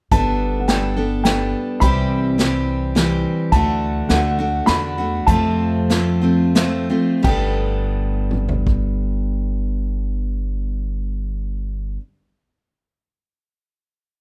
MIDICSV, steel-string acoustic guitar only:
0, 0, Header, 1, 2, 480
1, 0, Start_track
1, 0, Tempo, 569260
1, 99, Time_signature, 3, 2, 24, 8
1, 3459, Tempo, 600601
1, 4899, Tempo, 669643
1, 5859, Tempo, 708383
1, 10574, End_track
2, 0, Start_track
2, 0, Title_t, "Steel-string acoustic guitar"
2, 0, Program_c, 0, 25
2, 97, Note_on_c, 0, 55, 65
2, 101, Note_on_c, 0, 59, 64
2, 105, Note_on_c, 0, 62, 68
2, 106, Note_on_c, 0, 69, 75
2, 565, Note_off_c, 0, 59, 0
2, 568, Note_off_c, 0, 55, 0
2, 571, Note_off_c, 0, 62, 0
2, 572, Note_on_c, 0, 55, 51
2, 575, Note_on_c, 0, 59, 49
2, 578, Note_off_c, 0, 69, 0
2, 581, Note_on_c, 0, 62, 60
2, 588, Note_on_c, 0, 69, 61
2, 804, Note_off_c, 0, 69, 0
2, 812, Note_off_c, 0, 62, 0
2, 814, Note_on_c, 0, 69, 47
2, 815, Note_off_c, 0, 55, 0
2, 816, Note_off_c, 0, 59, 0
2, 822, Note_on_c, 0, 62, 41
2, 827, Note_on_c, 0, 59, 37
2, 1049, Note_off_c, 0, 59, 0
2, 1054, Note_on_c, 0, 55, 53
2, 1055, Note_off_c, 0, 62, 0
2, 1056, Note_off_c, 0, 69, 0
2, 1059, Note_on_c, 0, 59, 52
2, 1065, Note_on_c, 0, 62, 57
2, 1069, Note_on_c, 0, 69, 62
2, 1527, Note_off_c, 0, 55, 0
2, 1532, Note_on_c, 0, 48, 73
2, 1534, Note_off_c, 0, 59, 0
2, 1536, Note_off_c, 0, 62, 0
2, 1536, Note_on_c, 0, 52, 75
2, 1537, Note_on_c, 0, 55, 74
2, 1540, Note_off_c, 0, 69, 0
2, 1540, Note_on_c, 0, 60, 74
2, 1544, Note_on_c, 0, 67, 75
2, 1997, Note_off_c, 0, 52, 0
2, 2003, Note_off_c, 0, 55, 0
2, 2007, Note_on_c, 0, 52, 55
2, 2008, Note_off_c, 0, 60, 0
2, 2013, Note_on_c, 0, 55, 56
2, 2014, Note_off_c, 0, 48, 0
2, 2014, Note_off_c, 0, 67, 0
2, 2018, Note_on_c, 0, 60, 58
2, 2024, Note_on_c, 0, 67, 59
2, 2479, Note_off_c, 0, 52, 0
2, 2483, Note_off_c, 0, 55, 0
2, 2489, Note_on_c, 0, 52, 65
2, 2491, Note_off_c, 0, 60, 0
2, 2493, Note_on_c, 0, 55, 62
2, 2496, Note_off_c, 0, 67, 0
2, 2502, Note_on_c, 0, 60, 62
2, 2506, Note_on_c, 0, 67, 68
2, 2972, Note_off_c, 0, 52, 0
2, 2975, Note_off_c, 0, 55, 0
2, 2976, Note_on_c, 0, 50, 66
2, 2979, Note_off_c, 0, 60, 0
2, 2981, Note_off_c, 0, 67, 0
2, 2981, Note_on_c, 0, 57, 75
2, 2984, Note_on_c, 0, 62, 76
2, 2987, Note_on_c, 0, 66, 77
2, 3447, Note_off_c, 0, 50, 0
2, 3457, Note_on_c, 0, 50, 58
2, 3458, Note_off_c, 0, 62, 0
2, 3460, Note_off_c, 0, 57, 0
2, 3463, Note_on_c, 0, 57, 59
2, 3464, Note_off_c, 0, 66, 0
2, 3468, Note_on_c, 0, 62, 62
2, 3473, Note_on_c, 0, 66, 54
2, 3676, Note_off_c, 0, 66, 0
2, 3686, Note_off_c, 0, 62, 0
2, 3686, Note_on_c, 0, 66, 52
2, 3689, Note_off_c, 0, 50, 0
2, 3692, Note_off_c, 0, 57, 0
2, 3695, Note_on_c, 0, 62, 48
2, 3703, Note_on_c, 0, 57, 41
2, 3922, Note_off_c, 0, 57, 0
2, 3922, Note_off_c, 0, 66, 0
2, 3926, Note_on_c, 0, 50, 56
2, 3927, Note_off_c, 0, 62, 0
2, 3932, Note_on_c, 0, 57, 55
2, 3936, Note_on_c, 0, 62, 56
2, 3942, Note_on_c, 0, 66, 57
2, 4151, Note_off_c, 0, 66, 0
2, 4161, Note_off_c, 0, 62, 0
2, 4161, Note_on_c, 0, 66, 50
2, 4162, Note_off_c, 0, 50, 0
2, 4165, Note_off_c, 0, 57, 0
2, 4171, Note_on_c, 0, 62, 47
2, 4180, Note_on_c, 0, 57, 37
2, 4401, Note_off_c, 0, 57, 0
2, 4401, Note_on_c, 0, 41, 73
2, 4402, Note_off_c, 0, 66, 0
2, 4406, Note_on_c, 0, 48, 69
2, 4406, Note_on_c, 0, 53, 78
2, 4407, Note_off_c, 0, 62, 0
2, 4410, Note_on_c, 0, 60, 72
2, 4411, Note_on_c, 0, 57, 74
2, 4412, Note_on_c, 0, 65, 84
2, 4883, Note_off_c, 0, 53, 0
2, 4889, Note_off_c, 0, 57, 0
2, 4892, Note_off_c, 0, 60, 0
2, 4893, Note_on_c, 0, 53, 53
2, 4897, Note_off_c, 0, 65, 0
2, 4898, Note_off_c, 0, 41, 0
2, 4899, Note_on_c, 0, 57, 51
2, 4900, Note_off_c, 0, 48, 0
2, 4902, Note_on_c, 0, 60, 57
2, 4906, Note_on_c, 0, 65, 58
2, 5113, Note_off_c, 0, 65, 0
2, 5122, Note_off_c, 0, 60, 0
2, 5122, Note_on_c, 0, 65, 48
2, 5126, Note_off_c, 0, 53, 0
2, 5127, Note_off_c, 0, 57, 0
2, 5130, Note_on_c, 0, 60, 49
2, 5136, Note_on_c, 0, 57, 45
2, 5138, Note_on_c, 0, 53, 41
2, 5354, Note_off_c, 0, 53, 0
2, 5360, Note_off_c, 0, 57, 0
2, 5362, Note_off_c, 0, 65, 0
2, 5363, Note_off_c, 0, 60, 0
2, 5363, Note_on_c, 0, 53, 56
2, 5369, Note_on_c, 0, 57, 62
2, 5372, Note_on_c, 0, 60, 59
2, 5376, Note_on_c, 0, 65, 64
2, 5601, Note_off_c, 0, 65, 0
2, 5604, Note_off_c, 0, 60, 0
2, 5607, Note_off_c, 0, 53, 0
2, 5607, Note_off_c, 0, 57, 0
2, 5609, Note_on_c, 0, 65, 49
2, 5612, Note_on_c, 0, 60, 45
2, 5616, Note_on_c, 0, 57, 46
2, 5621, Note_on_c, 0, 53, 42
2, 5844, Note_off_c, 0, 53, 0
2, 5847, Note_on_c, 0, 55, 76
2, 5859, Note_off_c, 0, 65, 0
2, 5861, Note_off_c, 0, 60, 0
2, 5862, Note_off_c, 0, 57, 0
2, 5864, Note_on_c, 0, 59, 78
2, 5877, Note_on_c, 0, 62, 78
2, 5889, Note_on_c, 0, 69, 80
2, 9067, Note_off_c, 0, 55, 0
2, 9084, Note_off_c, 0, 59, 0
2, 9098, Note_off_c, 0, 62, 0
2, 9110, Note_off_c, 0, 69, 0
2, 10574, End_track
0, 0, End_of_file